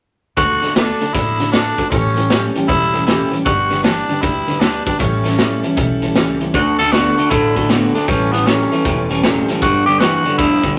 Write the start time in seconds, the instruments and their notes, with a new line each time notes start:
0.37 upright bass D2, clean electric guitar D3 A3, steel-string acoustic guitar D3 A3 D4 F#4 A4, tenor saxophone F#4, kick, closed hi-hat
0.62 clean electric guitar D3 A3, steel-string acoustic guitar D4 F#4 A4, snare, closed hi-hat
0.75 clean electric guitar D3 B3, steel-string acoustic guitar D3 A3 D4 F#4 A4, tenor saxophone D4, snare, closed hi-hat
1.00 clean electric guitar D3 A3, steel-string acoustic guitar D4 F#4 A4, closed hi-hat
1.13 upright bass A1, clean electric guitar D3 A3, steel-string acoustic guitar A3 D4 F#4 A4, tenor saxophone E4, kick, closed hi-hat
1.38 clean electric guitar D3 A3, steel-string acoustic guitar D4 F#4 A4, closed hi-hat
1.52 steel-string acoustic guitar D3 A3 D4 F#4 A4, clean electric guitar D3 A3, tenor saxophone D4, snare, closed hi-hat
1.76 clean electric guitar D3 A3, steel-string acoustic guitar D4 F#4 A4, kick, closed hi-hat
1.90 upright bass A1, steel-string acoustic guitar A2 E3 G3 C#4 G4 A4, clean electric guitar A2 E3, tenor saxophone C#4, kick, closed hi-hat
2.15 clean electric guitar A2 E3, steel-string acoustic guitar G3 C#4 G4 A4, closed hi-hat
2.30 steel-string acoustic guitar A2 E3 G3 C#4 G4 A4, clean electric guitar A2 F#3, snare, closed hi-hat
2.55 clean electric guitar A2 E3, steel-string acoustic guitar G3 C#4 G4 A4, closed hi-hat
2.68 upright bass E1, clean electric guitar A2 E3, steel-string acoustic guitar G3 C#4 G4 A4, tenor saxophone E4, kick, closed hi-hat
2.93 clean electric guitar A2 E3, steel-string acoustic guitar G3 C#4 G4 A4, closed hi-hat
3.06 steel-string acoustic guitar A2 E3 G3 C#4 G4 A4, clean electric guitar A2 E3, tenor saxophone E4, snare, closed hi-hat
3.31 clean electric guitar A2 E3, steel-string acoustic guitar G3 C#4 G4 A4, closed hi-hat
3.45 upright bass G1, clean electric guitar G2 D3, steel-string acoustic guitar G3 D4 G4 B4, tenor saxophone F#4, kick, closed hi-hat
3.70 clean electric guitar G2 D3, steel-string acoustic guitar D4 G4 B4, snare, closed hi-hat
3.83 clean electric guitar G2 E3, steel-string acoustic guitar G3 D4 G4 B4, tenor saxophone D4, snare, closed hi-hat
4.08 clean electric guitar G2 D3, steel-string acoustic guitar D4 G4 B4, closed hi-hat
4.21 upright bass D2, clean electric guitar G2 D3, steel-string acoustic guitar G3 D4 G4 B4, tenor saxophone E4, kick, closed hi-hat
4.47 clean electric guitar G2 D3, steel-string acoustic guitar D4 G4 B4, closed hi-hat
4.60 clean electric guitar G2 D3, steel-string acoustic guitar G3 D4 G4 B4, tenor saxophone D4, snare, closed hi-hat
4.85 clean electric guitar G2 D3, tenor saxophone D4, steel-string acoustic guitar D4 G4 B4, kick, closed hi-hat
4.99 upright bass A1, clean electric guitar A2 E3, steel-string acoustic guitar A2 E3 G3 C#4 E4 A4, tenor saxophone C#4, kick, closed hi-hat
5.24 clean electric guitar A2 E3, steel-string acoustic guitar G3 C#4 E4 A4, snare, closed hi-hat
5.38 steel-string acoustic guitar A2 E3 G3 C#4 E4 A4, clean electric guitar A2 F#3, snare, closed hi-hat
5.62 clean electric guitar A2 E3, steel-string acoustic guitar G3 C#4 E4 A4, closed hi-hat
5.76 upright bass B1, clean electric guitar A2 E3, steel-string acoustic guitar G3 C#4 E4 A4, kick, closed hi-hat
6.02 clean electric guitar A2 E3, steel-string acoustic guitar G3 C#4 E4 A4, closed hi-hat
6.15 upright bass C#2, steel-string acoustic guitar A2 E3 G3 C#4 E4 A4, clean electric guitar A2 E3, snare, closed hi-hat
6.40 clean electric guitar A2 E3, steel-string acoustic guitar G3 C#4 E4 A4, closed hi-hat
6.54 upright bass D2, steel-string acoustic guitar D3 A3 D4 F#4 A4, clean electric guitar D3 A3, tenor saxophone F#4, kick, closed hi-hat
6.78 clean electric guitar D3 A3, steel-string acoustic guitar D4 F#4 A4, tenor saxophone A4, closed hi-hat
6.92 steel-string acoustic guitar D3 A3 D4 F#4 A4, clean electric guitar D3 B3, tenor saxophone F#4, snare, closed hi-hat
7.17 clean electric guitar D3 A3, steel-string acoustic guitar D4 F#4 A4, closed hi-hat
7.30 upright bass A1, clean electric guitar D3 A3, steel-string acoustic guitar A3 D4 F#4 A4, tenor saxophone E4, kick, closed hi-hat
7.55 clean electric guitar D3 A3, steel-string acoustic guitar D4 F#4 A4, kick, closed hi-hat
7.69 steel-string acoustic guitar D3 A3 D4 F#4 A4, clean electric guitar D3 B3, snare, closed hi-hat
7.93 clean electric guitar D3 A3, tenor saxophone D4, steel-string acoustic guitar D4 F#4 A4, snare, closed hi-hat
8.07 upright bass A1, steel-string acoustic guitar A2 E3 G3 C#4 G4 A4, clean electric guitar A2 E3, tenor saxophone C#4, kick, closed hi-hat
8.31 clean electric guitar A2 E3, steel-string acoustic guitar G3 C#4 G4 A4, tenor saxophone B3, closed hi-hat
8.46 steel-string acoustic guitar A2 E3 G3 C#4 G4 A4, clean electric guitar A2 F#3, tenor saxophone C#4, snare, closed hi-hat
8.71 clean electric guitar A2 E3, steel-string acoustic guitar G3 C#4 G4 A4, closed hi-hat
8.84 upright bass E1, clean electric guitar A2 E3, steel-string acoustic guitar G3 C#4 G4 A4, kick, closed hi-hat
9.09 clean electric guitar A2 E3, steel-string acoustic guitar G3 C#4 G4 A4, closed hi-hat
9.23 steel-string acoustic guitar A2 E3 G3 C#4 G4 A4, clean electric guitar A2 F#3, snare, closed hi-hat
9.48 clean electric guitar A2 E3, steel-string acoustic guitar G3 C#4 G4 A4, snare, closed hi-hat
9.61 upright bass G1, clean electric guitar G2 D3, steel-string acoustic guitar G3 D4 G4 B4, tenor saxophone F#4, kick, closed hi-hat
9.86 clean electric guitar G2 D3, steel-string acoustic guitar D4 G4 B4, tenor saxophone G4, closed hi-hat
9.99 clean electric guitar G2 E3, steel-string acoustic guitar G3 D4 G4 B4, tenor saxophone F#4, snare, closed hi-hat
10.24 clean electric guitar G2 D3, steel-string acoustic guitar D4 G4 B4, closed hi-hat
10.37 upright bass D2, clean electric guitar G2 D3, steel-string acoustic guitar G3 D4 G4 B4, tenor saxophone E4, kick, closed hi-hat
10.62 clean electric guitar G2 D3, steel-string acoustic guitar D4 G4 B4, kick, closed hi-hat